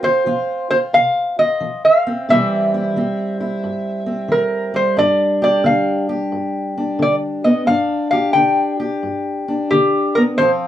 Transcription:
0.00 0.21 F2 medium
0.00 0.18 A3 medium
0.00 2.06 C4 medium
0.00 0.26 F4 medium
0.04 0.69 C5 medium
0.26 0.89 F3 medium
0.26 0.70 F4 medium
0.71 1.38 F4 medium
0.71 0.77 C5 medium
0.93 1.56 C3 medium
0.93 1.36 F5 loud
1.39 2.26 F4 medium
1.39 1.81 D#5 medium
1.61 2.24 F3 medium
1.85 2.26 F5 medium
2.07 2.26 C4 medium
2.29 2.91 C3 medium
2.29 2.95 E3 medium
2.29 4.73 G3 medium
2.29 2.96 C4 medium
2.29 2.73 E4 medium
2.29 4.38 E5 loud
2.74 3.39 E4 medium
2.96 3.59 E3 medium
2.96 4.05 C4 medium
3.40 4.98 E4 medium
3.63 4.26 G2 medium
4.06 4.95 C4 soft
4.28 4.92 E3 medium
4.28 4.76 A#4 medium
4.74 7.44 G3 medium
4.74 4.98 C5 medium
4.97 5.60 G2 medium
4.97 5.64 D4 medium
4.97 5.40 D5 medium
5.42 6.09 G4 medium
5.42 5.67 D5 medium
5.64 6.28 D3 medium
5.64 6.76 D4 medium
5.64 6.07 F5 medium
6.09 7.65 G4 medium
6.32 6.95 G2 medium
6.78 7.65 D4 medium
6.99 7.63 D3 medium
6.99 7.14 D5 medium
7.44 7.65 B3 medium
7.44 7.67 D#5 medium
7.67 8.30 G2 medium
7.67 8.34 D4 medium
7.67 8.10 F5 medium
8.11 8.78 G4 medium
8.11 8.33 F5 medium
8.33 8.98 D3 medium
8.33 9.47 D4 medium
8.33 8.76 G5 medium
8.80 10.35 G4 medium
9.03 9.66 G2 medium
9.48 10.36 D4 medium
9.71 10.34 D3 medium
9.71 10.16 G4 medium
10.15 10.36 B3 medium
10.15 10.21 A#4 medium
10.38 10.68 F2 medium
10.38 10.68 F3 medium
10.38 10.68 C4 medium
10.38 10.68 F4 medium
10.38 10.50 C5 loud

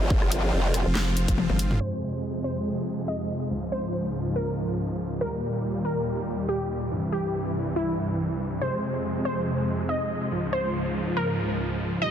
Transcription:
0.00 0.51 G1 loud
0.00 1.77 F3 medium
0.00 1.77 C4 medium
0.00 1.79 F4 medium
0.10 kick loud
0.22 cross-stick medium
0.32 closed hi-hat medium
0.53 0.84 F1 loud
0.74 cross-stick medium
0.74 closed hi-hat medium
0.86 1.26 F1 loud
0.95 snare loud
0.95 clap medium
1.17 closed hi-hat medium
1.28 1.48 F1 loud
1.28 kick medium
1.28 closed hi-hat soft
1.38 high tom medium
1.50 1.79 G1 loud
1.50 high tom medium
1.59 closed hi-hat medium
1.71 mid tom medium
1.80 3.49 F2 medium
1.80 3.49 C3 medium
1.80 3.49 G#3 medium
1.80 2.37 C5 medium
1.80 crash medium
2.44 3.00 C5 loud
3.08 3.64 D#5 medium
3.51 5.19 C#2 medium
3.51 5.19 G#2 medium
3.51 5.19 F3 medium
3.72 4.28 C5 medium
4.36 5.13 A#4 medium
5.21 6.90 D#2 medium
5.21 6.90 A#2 medium
5.21 6.89 G3 medium
5.21 5.77 A#4 medium
5.85 6.41 A#4 medium
6.49 7.05 G4 medium
6.91 8.60 C2 medium
6.91 8.60 G2 medium
6.91 8.60 E3 medium
7.12 7.69 G4 medium
7.76 8.54 E4 medium
8.61 10.30 F2 medium
8.61 10.30 C3 medium
8.61 10.30 G#3 medium
8.61 9.18 C5 loud
9.25 9.81 C5 medium
9.89 10.45 D#5 medium
10.32 12.00 C#2 medium
10.32 12.00 G#2 medium
10.32 12.00 F3 medium
10.53 11.09 C5 loud
11.17 11.94 A#4 medium
12.02 12.11 D#2 medium
12.02 12.11 A#2 medium
12.02 12.11 G3 medium
12.02 12.11 D#5 loud

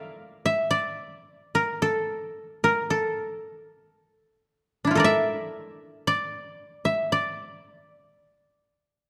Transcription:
0.00 1.40 A4 soft
0.00 1.39 A#4 soft
0.00 0.70 D5 medium
0.00 0.45 E5 medium
0.00 0.52 F5 medium
0.46 1.95 E5 medium
0.71 2.31 D5 medium
1.55 1.88 A#4 medium
1.82 2.70 A4 medium
2.64 2.96 A#4 medium
2.90 4.81 A4 medium
4.85 7.27 D4 soft
4.85 7.13 E4 soft
4.91 5.10 F4 medium
4.95 6.86 A4 medium
4.95 6.81 A#4 medium
5.00 6.07 D5 medium
5.04 6.54 E5 medium
6.07 7.12 D5 medium
6.85 8.34 E5 medium
7.12 8.72 D5 medium

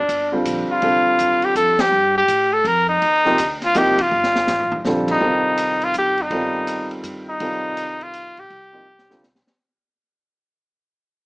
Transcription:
0.00 0.35 D4 medium
0.09 0.44 G1 medium
0.09 hi-hat pedal medium
0.09 ride medium
0.32 0.79 D3 medium
0.32 0.80 G3 medium
0.32 0.80 C4 medium
0.32 0.80 F4 medium
0.32 0.80 A4 medium
0.45 0.68 A#1 medium
0.45 hi-hat pedal medium
0.45 ride medium
0.69 1.46 F4 medium
0.69 muted upright bass stroke soft
0.82 1.04 C2 medium
0.82 1.84 D3 medium
0.82 1.84 G3 soft
0.82 1.85 C4 medium
0.82 1.85 F4 soft
0.82 1.85 A4 medium
0.82 ride medium
1.06 muted upright bass stroke soft
1.18 1.54 D#2 medium
1.18 hi-hat pedal medium
1.18 ride medium
1.42 1.56 G4 medium
1.42 ride soft
1.55 1.91 F2 medium
1.55 1.82 A4 medium
1.55 hi-hat pedal medium
1.55 ride medium
1.79 2.16 G4 medium
1.79 snare medium
1.79 ride medium
1.91 2.27 G2 medium
2.18 2.55 G4 medium
2.28 2.64 A2 medium
2.28 hi-hat pedal medium
2.28 ride medium
2.53 2.69 A4 medium
2.64 3.00 F2 loud
2.64 2.88 A#4 medium
2.64 ride medium
2.89 3.58 D#4 medium
3.02 3.37 D#2 medium
3.02 ride medium
3.25 3.37 C3 medium
3.25 3.37 F3 medium
3.25 3.37 A#3 medium
3.25 3.37 D#4 medium
3.25 3.37 G4 medium
3.25 snare soft
3.38 3.74 D2 medium
3.38 hi-hat pedal medium
3.38 ride medium
3.62 3.79 F4 medium
3.62 snare soft
3.62 ride medium
3.74 4.10 C2 medium
3.74 3.96 C3 medium
3.74 3.96 F3 medium
3.74 3.96 A#3 medium
3.74 3.97 D#4 medium
3.74 3.97 G4 medium
3.74 4.03 G4 medium
3.74 hi-hat pedal medium
3.74 ride medium
3.98 4.86 F4 medium
3.98 kick medium
3.98 ride medium
4.11 4.47 G1 medium
4.23 snare soft
4.36 snare medium
4.47 4.84 A1 medium
4.47 snare medium
4.47 hi-hat pedal medium
4.60 floor tom medium
4.72 floor tom medium
4.85 5.20 A#1 medium
4.85 5.22 D3 medium
4.85 5.21 G3 medium
4.85 5.20 C4 medium
4.85 5.21 F4 medium
4.85 5.22 A4 medium
4.85 snare medium
5.08 5.86 D#4 medium
5.08 kick medium
5.08 crash medium
5.21 5.90 C2 medium
5.21 6.23 D#3 medium
5.21 6.24 G3 soft
5.21 6.23 C4 soft
5.21 6.24 F4 soft
5.21 6.24 A4 medium
5.57 hi-hat pedal medium
5.57 ride medium
5.82 5.96 F4 medium
5.82 ride soft
5.94 6.28 G2 medium
5.94 hi-hat pedal medium
5.94 ride medium
5.98 6.23 G4 medium
6.18 ride soft
6.22 6.93 D#4 medium
6.30 7.00 G1 medium
6.30 7.33 D#3 medium
6.30 7.33 G3 medium
6.30 7.33 C4 medium
6.30 7.33 F4 medium
6.30 7.33 A4 medium
6.30 ride medium
6.67 hi-hat pedal medium
6.67 ride medium
6.91 ride soft
7.03 7.38 G2 medium
7.03 hi-hat pedal medium
7.03 ride medium
7.29 8.04 D#4 medium
7.40 8.33 C2 medium
7.40 8.42 D#3 medium
7.40 8.43 G3 soft
7.40 8.43 C4 soft
7.40 8.43 F4 soft
7.40 8.43 A4 medium
7.40 ride medium
7.77 hi-hat pedal soft
7.77 ride medium
8.01 8.41 F4 medium
8.01 ride soft
8.13 hi-hat pedal soft
8.13 ride medium
8.37 8.50 B1 medium
8.37 9.24 G4 loud
8.37 ride soft
8.50 9.43 C2 medium
8.50 ride soft
8.73 8.85 C3 medium
8.73 8.85 F3 medium
8.73 8.85 A#3 medium
8.73 8.86 D#4 medium
8.73 8.86 G4 medium
8.99 snare soft
9.09 9.21 D3 medium
9.09 9.22 G3 medium
9.09 9.22 C4 medium
9.09 9.22 F4 medium
9.09 9.22 A4 medium
9.09 snare medium
9.23 snare medium
9.23 hi-hat pedal medium
9.35 snare medium
9.47 snare medium

